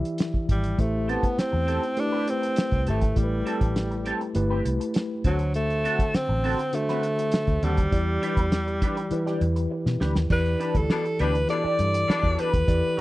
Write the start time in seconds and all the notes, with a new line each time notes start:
Already playing: E3 E4 G4 D5 E5
0.05 closed hi-hat
0.18 snare, closed hi-hat
0.34 kick
0.49 G#1 G3, kick, closed hi-hat
0.64 closed hi-hat
0.78 A1 A3 E4 G4 C5, kick, closed hi-hat
1.08 B3 C4 G4 A4, closed hi-hat
1.23 kick, closed hi-hat
1.38 C4, muted fingered electric bass stroke, snare, closed hi-hat
1.52 E2, muted clean electric guitar stroke
1.67 C4 G4 A4, closed hi-hat
1.82 muted clean electric guitar stroke, closed hi-hat
1.97 A3 D4 E4 G4 B4, muted clean electric guitar stroke, closed hi-hat
2.12 C4 G4 B4
2.27 C4, muted clean electric guitar stroke, closed hi-hat
2.42 muted clean electric guitar stroke, closed hi-hat
2.56 muted clean electric guitar stroke, snare, closed hi-hat
2.71 C2, kick, closed hi-hat
2.87 G#1 A3 C4 G4 A4, closed hi-hat
3.01 muted clean electric guitar stroke, kick, closed hi-hat
3.16 A1 G3 A3 E4 G4 A4, kick, closed hi-hat
3.23 B4
3.46 C4 G4 A4, closed hi-hat
3.61 A1, kick, closed hi-hat
3.76 snare, closed hi-hat
3.91 muted clean electric guitar stroke, closed hi-hat
4.06 C4 G4 A4, closed hi-hat
4.21 muted clean electric guitar stroke, closed hi-hat
4.35 G1 A3 E4 G4 B4, muted clean electric guitar stroke, closed hi-hat
4.50 C4 G4 B4
4.65 C2, muted clean electric guitar stroke, closed hi-hat
4.80 muted clean electric guitar stroke, closed hi-hat
4.94 muted clean electric guitar stroke, snare, closed hi-hat
5.24 D2 D3 F#3 C4 D4 F#4 A4 C5, kick, closed hi-hat
5.39 muted clean electric guitar stroke, closed hi-hat
5.54 A3, closed hi-hat
5.70 closed hi-hat
5.84 C4 F#4 A4, closed hi-hat
5.99 kick, closed hi-hat
6.14 C4, muted fingered electric bass stroke, snare, closed hi-hat
6.29 A1, muted clean electric guitar stroke
6.44 C4 F#4 A4, open hi-hat
6.59 muted clean electric guitar stroke, closed hi-hat
6.73 D3 A3 D4 F#4 C5, muted clean electric guitar stroke, closed hi-hat
6.89 C4 F#4 B4, snare, closed hi-hat
7.03 muted clean electric guitar stroke, closed hi-hat
7.18 muted clean electric guitar stroke, closed hi-hat
7.31 muted clean electric guitar stroke, snare, closed hi-hat
7.47 D2, kick, closed hi-hat
7.63 D#2 G3 C4 F#4 A4, closed hi-hat
7.77 muted clean electric guitar stroke, kick, closed hi-hat
7.91 E2 E3 E4 G4 D5, kick, closed hi-hat
8.22 D4 G4 B4, closed hi-hat
8.37 E2, kick, closed hi-hat
8.52 snare, closed hi-hat
8.67 muted clean electric guitar stroke, closed hi-hat
8.82 D4 G4 B4, kick, closed hi-hat
8.97 muted clean electric guitar stroke, closed hi-hat
9.11 E3 E4 G4 B4, muted clean electric guitar stroke, closed hi-hat
9.26 D4 G4 D5, snare, closed hi-hat
9.41 E2, muted clean electric guitar stroke, closed hi-hat
9.56 muted clean electric guitar stroke, closed hi-hat
9.71 muted clean electric guitar stroke
9.86 B2, snare
10.00 D2 D4 G4 B4, snare
10.15 D#2, muted clean electric guitar stroke, snare
10.30 E2 E3 E4 G4 B4 D5, kick, crash
10.46 closed hi-hat
10.60 D4 G4 B4, closed hi-hat
10.75 D2 A4, kick, closed hi-hat
10.90 B2 G3 D4, snare
11.04 muted clean electric guitar stroke, closed hi-hat
11.19 D2 B2 G3 D4 G4 B4, closed hi-hat
11.34 muted clean electric guitar stroke, closed hi-hat
11.48 B2 E3 G3 D4 E4 G4 A4 D5, muted clean electric guitar stroke, closed hi-hat
11.64 D4 G4 D5, muted fingered electric bass stroke
11.79 G2, muted clean electric guitar stroke, closed hi-hat
11.94 muted clean electric guitar stroke, closed hi-hat
12.08 B2 G3 D4, muted fingered electric bass stroke, muted clean electric guitar stroke, snare
12.23 E2, kick
12.38 D4 G4 B4, closed hi-hat
12.53 D#2, muted clean electric guitar stroke, kick, closed hi-hat
12.68 E2 E3 E4 G4 D5, kick, closed hi-hat
12.97 D4